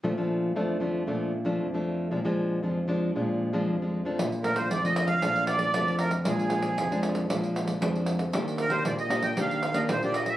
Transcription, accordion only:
X:1
M:4/4
L:1/16
Q:1/4=116
K:Bb
V:1 name="Accordion"
z16 | z16 | z2 B c d e2 f3 d4 B2 | _A6 z8 z2 |
z2 B c d e2 g f3 e c d e =e |]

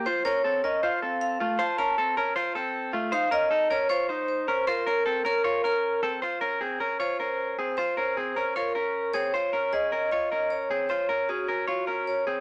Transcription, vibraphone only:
X:1
M:4/4
L:1/8
Q:1/4=155
K:Bbm
V:1 name="Vibraphone"
c d2 e f2 f2 | =a a2 z4 z | f e2 d c2 c2 | B B2 B2 B2 z |
z4 c4 | c4 B3 d- | d2 e2 e2 d2 | d2 G4 d2 |]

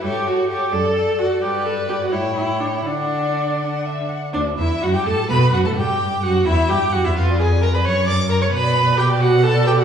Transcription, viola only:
X:1
M:6/8
L:1/16
Q:3/8=86
K:D
V:1 name="Viola"
G2 F2 G2 A4 F2 | G2 A2 G F E2 E2 D E | D8- D2 z2 | [K:Bm] D2 E2 F G A2 B2 F A |
G4 F2 E2 G2 F E | =F2 _A2 ^A _c ^c2 d2 A c | B4 G2 F2 A2 G F |]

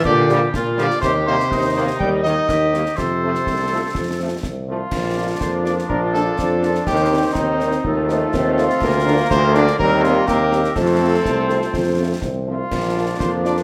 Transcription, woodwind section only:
X:1
M:2/4
L:1/8
Q:1/4=123
K:Gdor
V:1 name="Woodwind section"
G2 F2 | [K:Bb] G2 E2- | E2 G2 | A4- |
A3 z | [Fd]4 | [Fd]4 | [Ec]2 [Ec]2 |
[FA]4 | [FB]4 | [CB]2 [CB]2 | [Fc]4- |
[Fc]3 z | [Fd]4 |]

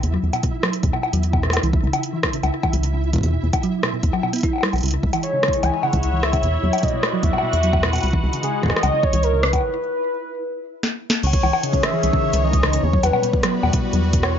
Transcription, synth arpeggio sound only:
X:1
M:4/4
L:1/16
Q:1/4=150
K:C#m
V:1 name="Synth arpeggio sound" clef=bass
z F, z B,, B,, z F, z B,, B,, z F, z B,, B,, z | E, z C, C, z E, z C, C, z E, z C, C, z E, | z B,, B,, z F, z B,, B,, z F, B,, B, E z =G, z | C, C, z E, z C, C, z E, z C, C, z E, z C, |
B,, z F, z B,, B,, z F, z B,, B,, z F, z B,, B,, | z E, z C, C, z E, z C, C, z E, z C, C, z | z16 | C, z E, z C, C, z E, z C, C, z E, z C, C, |
z F, z B,, B,, z F, z B,, B,, z F, z B,, B,, z |]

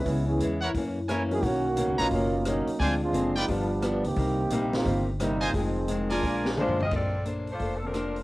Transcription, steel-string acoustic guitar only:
X:1
M:4/4
L:1/8
Q:"Swing" 1/4=175
K:Bbmix
V:1 name="Steel-string acoustic guitar"
[_D,A,_C_F] z [D,A,CF] z [_G,,_F,B,_D] z [G,,F,B,D] z | [=B,,^D,^A,^C] z [B,,D,A,C] z [B,,D,A,C] z [B,,D,A,C] z | [D,A,CF] z [D,A,CF] z [G,,F,=B,D] z [G,,F,B,D] z | [C,G,B,E] z [C,G,B,E] z [C,G,B,E] z [C,G,B,E] z |
[F,,E,A,C] z [F,,E,A,C] z [B,,F,A,D] z [B,,F,A,D] z | [K:Bb] [B,DAc] z [B,DAc] z [B,DAc] z [B,DAc] z |]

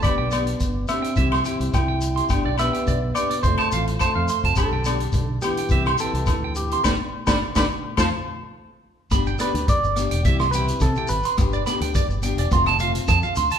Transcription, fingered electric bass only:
X:1
M:4/4
L:1/16
Q:1/4=106
K:Gmix
V:1 name="Fingered electric bass" clef=bass
G,,, B,,,3 G,,,2 z2 C,,2 z C,, C,,4 | G,,, B,,,2 z B,,,2 z2 F,,, z A,,,2 z F,, z F,,, | G,,, B,,,3 B,,,2 z2 C,,2 z C,, D,,4 | G,,, z2 G,,, z G,,, z2 F,, z6 z |
G,,,2 z D,, z G,,,2 E,,, C,,4 C, z _A,,, z | G,,,2 z D,, z G,,,2 E,,, F,,,4 F,, z D,, z |]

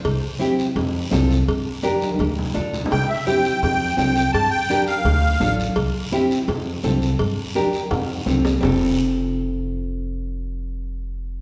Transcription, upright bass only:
X:1
M:4/4
L:1/8
Q:1/4=168
K:F
V:1 name="Upright bass" clef=bass
C,, z3 F,,2 C,,2 | G,, z3 D,,2 D,,2 | C,, z3 F,,2 C,,2 | G,, z3 D,,2 A,,,2 |
C,, z3 F,,2 C,,2 | G,, z3 F,,2 C,,2 | F,,,8- | F,,,8 |]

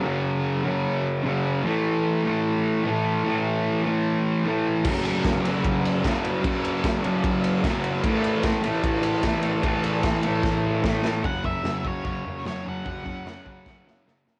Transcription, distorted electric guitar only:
X:1
M:4/4
L:1/8
Q:1/4=150
K:F#m
V:1 name="Distorted electric guitar" clef=bass
[F,,C,F,]3 [F,,C,F,]3 [F,,C,F,]2 | [A,,E,A,]3 [A,,E,A,]3 [A,,E,A,]2 | [A,,E,A,]3 [A,,E,A,]3 [A,,E,A,]2 | [F,,C,F,]3 [F,,C,F,]3 [F,,C,F,]2 |
[F,,C,F,]3 [F,,C,F,]3 [F,,C,F,]2 | [A,,E,A,]3 [A,,E,A,]3 [A,,E,A,]2 | [A,,E,A,]3 [A,,E,A,]3 [A,,E,A,]2 | [F,,C,F,] [F,,C,F,] [F,,C,F,] [F,,C,F,] [F,,C,F,] [F,,C,F,] [F,,C,F,] [F,,C,F,] |
[F,,C,F,] [F,,C,F,] [F,,C,F,] [F,,C,F,] [F,,C,F,] [F,,C,F,] [F,,C,F,] [F,,C,F,] |]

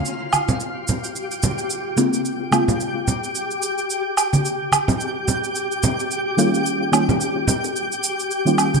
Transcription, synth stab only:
X:1
M:4/4
L:1/16
Q:"Swing 16ths" 1/4=109
K:Bbdor
V:1 name="Synth stab"
z12 z2 [D,A,B,CF]2- | [D,A,B,CF]2 [D,A,B,CF] z12 z | z12 z2 [E,G,B,DF]2- | [E,G,B,DF]2 [E,G,B,DF] z8 z2 [E,G,B,DF]3 |]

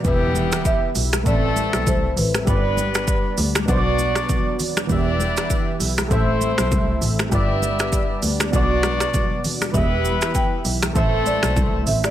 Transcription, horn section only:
X:1
M:4/4
L:1/8
Q:"Swing 16ths" 1/4=99
K:Em
V:1 name="Horn section"
[E,G,B,G]3 z [E,A,CA]3 z | [G,B,DB]3 z [B,DFd]3 z | [B,DGd]3 z [A,CEc]3 z | [B,EGe]3 z [B,DFd]3 z |
[G,B,EB]3 z [E,A,CA]3 z |]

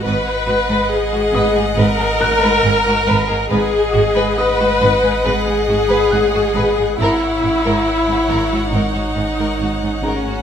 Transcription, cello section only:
X:1
M:4/4
L:1/16
Q:1/4=69
K:G#m
V:1 name="Cello section" clef=bass
G,, z G,, G,, z G,, G,, G,, G,, G,, G,, G,, G,, G,, G,, G,, | G,, z G,, G,, z G,, G,, G,, G,, G,, G,, G,, G,, G,, G,, G,, | G,, z G,, G,, z G,, G,, G,, G,, G,, G,, G,, G,, G,, G,, G,, |]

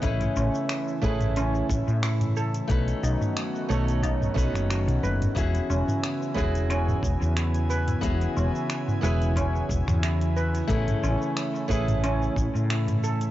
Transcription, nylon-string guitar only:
X:1
M:4/4
L:1/8
Q:"Swing 16ths" 1/4=90
K:E
V:1 name="Nylon-string guitar"
[A,CEGB]3 [A,CEGB]4- [A,CEGB] | [A,CDFB]3 [A,CDFc]2 [A,CDFB]3 | [B,CEFG]3 [B,CEFG]4- [B,CEFG] | [B,CEFG]3 [B,CEFB]4- [B,CEFB] |
[A,CEGB]3 [A,CEGB]4- [A,CEGB] |]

